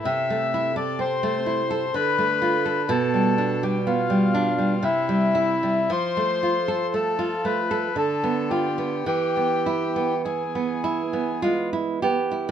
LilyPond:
<<
  \new Staff \with { instrumentName = "Bandoneon" } { \time 3/4 \key e \phrygian \tempo 4 = 59 e''8. d''16 c''4 b'4 | a'8. g'16 f'4 e'4 | c''4 a'8 b'8 a'8 g'8 | g'4 gis'4 r4 | }
  \new Staff \with { instrumentName = "Nylon-string guitar" } { \time 3/4 \key e \phrygian << { r2. | r2. | r2. | r2 <gis f'>8 <b g'>8 | } \\ { c16 a16 e'16 a'16 c'16 a16 e'16 a'16 d16 a16 f'16 a'16 | b,16 g16 d'16 g16 b16 g16 d'16 g16 c16 g16 e'16 g16 | f16 a16 f'16 a'16 a16 f'16 a16 a'16 d16 b16 f'16 b16 | e16 b16 e'16 b16 e'16 b16 e'16 b8 e'16 b16 e'16 | } >> }
>>